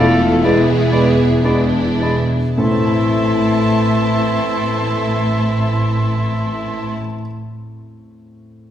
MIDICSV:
0, 0, Header, 1, 13, 480
1, 0, Start_track
1, 0, Key_signature, 0, "minor"
1, 0, Tempo, 904977
1, 228, Tempo, 1008403
1, 708, Tempo, 1138520
1, 1188, Time_signature, 4, 2, 24, 8
1, 1188, Tempo, 1067616
1, 2148, Tempo, 1090909
1, 3906, End_track
2, 0, Start_track
2, 0, Title_t, "Flute"
2, 0, Program_c, 0, 73
2, 234, Note_on_c, 0, 83, 48
2, 285, Note_off_c, 0, 83, 0
2, 464, Note_on_c, 0, 83, 49
2, 519, Note_off_c, 0, 83, 0
2, 709, Note_on_c, 0, 83, 42
2, 763, Note_off_c, 0, 83, 0
2, 954, Note_on_c, 0, 83, 46
2, 1007, Note_off_c, 0, 83, 0
2, 1192, Note_on_c, 0, 84, 47
2, 3123, Note_off_c, 0, 84, 0
2, 3906, End_track
3, 0, Start_track
3, 0, Title_t, "Oboe"
3, 0, Program_c, 1, 68
3, 0, Note_on_c, 1, 74, 55
3, 79, Note_off_c, 1, 74, 0
3, 230, Note_on_c, 1, 74, 50
3, 306, Note_off_c, 1, 74, 0
3, 457, Note_on_c, 1, 74, 51
3, 533, Note_off_c, 1, 74, 0
3, 711, Note_on_c, 1, 74, 46
3, 778, Note_off_c, 1, 74, 0
3, 947, Note_on_c, 1, 74, 42
3, 1014, Note_off_c, 1, 74, 0
3, 1188, Note_on_c, 1, 76, 46
3, 3119, Note_off_c, 1, 76, 0
3, 3906, End_track
4, 0, Start_track
4, 0, Title_t, "Clarinet"
4, 0, Program_c, 2, 71
4, 0, Note_on_c, 2, 69, 71
4, 235, Note_on_c, 2, 68, 67
4, 242, Note_off_c, 2, 69, 0
4, 706, Note_off_c, 2, 68, 0
4, 708, Note_on_c, 2, 68, 53
4, 944, Note_off_c, 2, 68, 0
4, 1188, Note_on_c, 2, 69, 53
4, 3120, Note_off_c, 2, 69, 0
4, 3906, End_track
5, 0, Start_track
5, 0, Title_t, "Violin section"
5, 0, Program_c, 3, 48
5, 0, Note_on_c, 3, 69, 67
5, 226, Note_off_c, 3, 69, 0
5, 230, Note_on_c, 3, 68, 60
5, 709, Note_off_c, 3, 68, 0
5, 713, Note_on_c, 3, 62, 61
5, 1191, Note_off_c, 3, 62, 0
5, 1195, Note_on_c, 3, 81, 50
5, 3126, Note_off_c, 3, 81, 0
5, 3906, End_track
6, 0, Start_track
6, 0, Title_t, "Grand piano"
6, 0, Program_c, 4, 0
6, 0, Control_c, 4, 64, 127
6, 0, Note_on_c, 4, 40, 78
6, 0, Note_on_c, 4, 59, 47
6, 0, Note_on_c, 4, 62, 55
6, 0, Note_on_c, 4, 64, 51
6, 0, Note_on_c, 4, 65, 59
6, 0, Note_on_c, 4, 69, 57
6, 0, Note_on_c, 4, 71, 65
6, 0, Note_on_c, 4, 74, 81
6, 0, Note_on_c, 4, 76, 72
6, 0, Note_on_c, 4, 77, 75
6, 134, Note_off_c, 4, 62, 0
6, 208, Note_off_c, 4, 40, 0
6, 211, Note_off_c, 4, 77, 0
6, 214, Note_off_c, 4, 65, 0
6, 226, Note_off_c, 4, 76, 0
6, 226, Note_on_c, 4, 76, 61
6, 229, Note_off_c, 4, 69, 0
6, 232, Note_on_c, 4, 40, 56
6, 233, Note_off_c, 4, 64, 0
6, 233, Note_on_c, 4, 64, 50
6, 234, Note_off_c, 4, 71, 0
6, 234, Note_on_c, 4, 71, 50
6, 239, Control_c, 4, 64, 0
6, 241, Note_off_c, 4, 74, 0
6, 242, Note_off_c, 4, 59, 0
6, 343, Control_c, 4, 64, 127
6, 461, Note_on_c, 4, 59, 53
6, 688, Note_off_c, 4, 76, 0
6, 691, Note_off_c, 4, 64, 0
6, 692, Note_off_c, 4, 71, 0
6, 703, Note_off_c, 4, 59, 0
6, 705, Note_on_c, 4, 71, 48
6, 708, Note_on_c, 4, 62, 46
6, 709, Note_on_c, 4, 68, 43
6, 710, Note_on_c, 4, 59, 43
6, 945, Note_off_c, 4, 68, 0
6, 951, Note_on_c, 4, 68, 44
6, 1095, Note_off_c, 4, 62, 0
6, 1170, Note_off_c, 4, 71, 0
6, 1172, Note_off_c, 4, 59, 0
6, 1173, Note_off_c, 4, 40, 0
6, 1188, Note_on_c, 4, 45, 47
6, 1190, Note_off_c, 4, 68, 0
6, 1190, Note_on_c, 4, 69, 52
6, 1192, Note_on_c, 4, 64, 41
6, 1195, Note_on_c, 4, 60, 40
6, 1199, Control_c, 4, 64, 0
6, 1220, Note_on_c, 4, 57, 44
6, 1245, Note_off_c, 4, 60, 0
6, 1252, Note_on_c, 4, 60, 42
6, 1278, Note_off_c, 4, 64, 0
6, 1284, Note_on_c, 4, 64, 43
6, 1294, Control_c, 4, 64, 127
6, 1306, Note_off_c, 4, 69, 0
6, 1313, Note_on_c, 4, 69, 46
6, 1345, Note_on_c, 4, 76, 42
6, 3120, Note_off_c, 4, 45, 0
6, 3150, Note_off_c, 4, 57, 0
6, 3182, Note_off_c, 4, 60, 0
6, 3214, Note_off_c, 4, 64, 0
6, 3242, Note_off_c, 4, 69, 0
6, 3273, Note_off_c, 4, 76, 0
6, 3906, End_track
7, 0, Start_track
7, 0, Title_t, "Violin section"
7, 0, Program_c, 5, 48
7, 0, Note_on_c, 5, 64, 52
7, 210, Note_off_c, 5, 64, 0
7, 228, Note_on_c, 5, 64, 52
7, 698, Note_off_c, 5, 64, 0
7, 704, Note_on_c, 5, 64, 42
7, 1048, Note_off_c, 5, 64, 0
7, 1185, Note_on_c, 5, 64, 45
7, 3116, Note_off_c, 5, 64, 0
7, 3906, End_track
8, 0, Start_track
8, 0, Title_t, "French horn section"
8, 0, Program_c, 6, 60
8, 0, Note_on_c, 6, 65, 72
8, 224, Note_on_c, 6, 64, 58
8, 226, Note_off_c, 6, 65, 0
8, 706, Note_off_c, 6, 64, 0
8, 706, Note_on_c, 6, 59, 56
8, 1116, Note_off_c, 6, 59, 0
8, 1188, Note_on_c, 6, 57, 46
8, 3119, Note_off_c, 6, 57, 0
8, 3906, End_track
9, 0, Start_track
9, 0, Title_t, "Viola section"
9, 0, Program_c, 7, 48
9, 0, Note_on_c, 7, 57, 67
9, 214, Note_off_c, 7, 57, 0
9, 224, Note_on_c, 7, 59, 60
9, 226, Note_on_c, 7, 56, 58
9, 450, Note_off_c, 7, 56, 0
9, 456, Note_on_c, 7, 56, 50
9, 699, Note_off_c, 7, 56, 0
9, 705, Note_on_c, 7, 56, 52
9, 706, Note_off_c, 7, 59, 0
9, 707, Note_on_c, 7, 52, 52
9, 1056, Note_off_c, 7, 52, 0
9, 1056, Note_off_c, 7, 56, 0
9, 1189, Note_on_c, 7, 57, 51
9, 1189, Note_on_c, 7, 60, 49
9, 3120, Note_off_c, 7, 60, 0
9, 3121, Note_off_c, 7, 57, 0
9, 3906, End_track
10, 0, Start_track
10, 0, Title_t, "Bassoon"
10, 0, Program_c, 8, 70
10, 0, Note_on_c, 8, 57, 48
10, 78, Note_off_c, 8, 57, 0
10, 240, Note_on_c, 8, 56, 46
10, 316, Note_off_c, 8, 56, 0
10, 465, Note_on_c, 8, 56, 48
10, 542, Note_off_c, 8, 56, 0
10, 712, Note_on_c, 8, 56, 47
10, 779, Note_off_c, 8, 56, 0
10, 951, Note_on_c, 8, 56, 38
10, 1019, Note_off_c, 8, 56, 0
10, 1192, Note_on_c, 8, 52, 52
10, 3124, Note_off_c, 8, 52, 0
10, 3906, End_track
11, 0, Start_track
11, 0, Title_t, "Timpani"
11, 0, Program_c, 10, 47
11, 1192, Note_on_c, 10, 45, 36
11, 3123, Note_off_c, 10, 45, 0
11, 3906, End_track
12, 0, Start_track
12, 0, Title_t, "Cello section"
12, 0, Program_c, 11, 48
12, 0, Note_on_c, 11, 40, 69
12, 1041, Note_off_c, 11, 40, 0
12, 1184, Note_on_c, 11, 45, 47
12, 3115, Note_off_c, 11, 45, 0
12, 3906, End_track
13, 0, Start_track
13, 0, Title_t, "Double bass section"
13, 0, Program_c, 12, 48
13, 0, Note_on_c, 12, 28, 69
13, 1041, Note_off_c, 12, 28, 0
13, 1188, Note_on_c, 12, 33, 49
13, 3119, Note_off_c, 12, 33, 0
13, 3906, End_track
0, 0, End_of_file